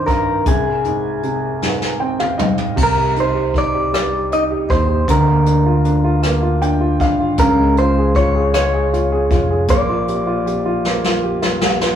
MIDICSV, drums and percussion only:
0, 0, Header, 1, 2, 480
1, 0, Start_track
1, 0, Tempo, 768246
1, 291, Time_signature, 6, 3, 24, 8
1, 7470, End_track
2, 0, Start_track
2, 0, Title_t, "Drums"
2, 48, Note_on_c, 9, 36, 73
2, 48, Note_on_c, 9, 42, 43
2, 110, Note_off_c, 9, 36, 0
2, 111, Note_off_c, 9, 42, 0
2, 287, Note_on_c, 9, 42, 78
2, 288, Note_on_c, 9, 36, 102
2, 350, Note_off_c, 9, 42, 0
2, 351, Note_off_c, 9, 36, 0
2, 527, Note_on_c, 9, 42, 37
2, 590, Note_off_c, 9, 42, 0
2, 770, Note_on_c, 9, 42, 32
2, 832, Note_off_c, 9, 42, 0
2, 1014, Note_on_c, 9, 38, 40
2, 1076, Note_off_c, 9, 38, 0
2, 1135, Note_on_c, 9, 38, 36
2, 1197, Note_off_c, 9, 38, 0
2, 1373, Note_on_c, 9, 47, 54
2, 1435, Note_off_c, 9, 47, 0
2, 1494, Note_on_c, 9, 45, 71
2, 1556, Note_off_c, 9, 45, 0
2, 1610, Note_on_c, 9, 43, 61
2, 1672, Note_off_c, 9, 43, 0
2, 1733, Note_on_c, 9, 36, 95
2, 1735, Note_on_c, 9, 49, 72
2, 1795, Note_off_c, 9, 36, 0
2, 1797, Note_off_c, 9, 49, 0
2, 1976, Note_on_c, 9, 42, 38
2, 2038, Note_off_c, 9, 42, 0
2, 2213, Note_on_c, 9, 36, 51
2, 2220, Note_on_c, 9, 42, 32
2, 2276, Note_off_c, 9, 36, 0
2, 2283, Note_off_c, 9, 42, 0
2, 2462, Note_on_c, 9, 37, 76
2, 2462, Note_on_c, 9, 42, 73
2, 2524, Note_off_c, 9, 42, 0
2, 2525, Note_off_c, 9, 37, 0
2, 2700, Note_on_c, 9, 42, 40
2, 2762, Note_off_c, 9, 42, 0
2, 2936, Note_on_c, 9, 36, 80
2, 2941, Note_on_c, 9, 42, 42
2, 2998, Note_off_c, 9, 36, 0
2, 3004, Note_off_c, 9, 42, 0
2, 3175, Note_on_c, 9, 36, 97
2, 3176, Note_on_c, 9, 42, 88
2, 3237, Note_off_c, 9, 36, 0
2, 3239, Note_off_c, 9, 42, 0
2, 3412, Note_on_c, 9, 42, 42
2, 3474, Note_off_c, 9, 42, 0
2, 3654, Note_on_c, 9, 42, 37
2, 3716, Note_off_c, 9, 42, 0
2, 3894, Note_on_c, 9, 37, 80
2, 3894, Note_on_c, 9, 42, 73
2, 3956, Note_off_c, 9, 42, 0
2, 3957, Note_off_c, 9, 37, 0
2, 4136, Note_on_c, 9, 42, 40
2, 4198, Note_off_c, 9, 42, 0
2, 4374, Note_on_c, 9, 36, 79
2, 4375, Note_on_c, 9, 42, 42
2, 4436, Note_off_c, 9, 36, 0
2, 4438, Note_off_c, 9, 42, 0
2, 4609, Note_on_c, 9, 42, 90
2, 4612, Note_on_c, 9, 36, 103
2, 4671, Note_off_c, 9, 42, 0
2, 4675, Note_off_c, 9, 36, 0
2, 4855, Note_on_c, 9, 42, 39
2, 4917, Note_off_c, 9, 42, 0
2, 5092, Note_on_c, 9, 36, 63
2, 5095, Note_on_c, 9, 42, 38
2, 5155, Note_off_c, 9, 36, 0
2, 5157, Note_off_c, 9, 42, 0
2, 5335, Note_on_c, 9, 42, 85
2, 5336, Note_on_c, 9, 37, 88
2, 5398, Note_off_c, 9, 42, 0
2, 5399, Note_off_c, 9, 37, 0
2, 5584, Note_on_c, 9, 42, 41
2, 5647, Note_off_c, 9, 42, 0
2, 5815, Note_on_c, 9, 36, 79
2, 5817, Note_on_c, 9, 42, 50
2, 5878, Note_off_c, 9, 36, 0
2, 5880, Note_off_c, 9, 42, 0
2, 6050, Note_on_c, 9, 42, 96
2, 6053, Note_on_c, 9, 36, 107
2, 6113, Note_off_c, 9, 42, 0
2, 6115, Note_off_c, 9, 36, 0
2, 6298, Note_on_c, 9, 42, 45
2, 6360, Note_off_c, 9, 42, 0
2, 6542, Note_on_c, 9, 42, 37
2, 6604, Note_off_c, 9, 42, 0
2, 6778, Note_on_c, 9, 38, 43
2, 6841, Note_off_c, 9, 38, 0
2, 6899, Note_on_c, 9, 38, 47
2, 6962, Note_off_c, 9, 38, 0
2, 7137, Note_on_c, 9, 38, 59
2, 7200, Note_off_c, 9, 38, 0
2, 7257, Note_on_c, 9, 38, 85
2, 7319, Note_off_c, 9, 38, 0
2, 7380, Note_on_c, 9, 38, 79
2, 7442, Note_off_c, 9, 38, 0
2, 7470, End_track
0, 0, End_of_file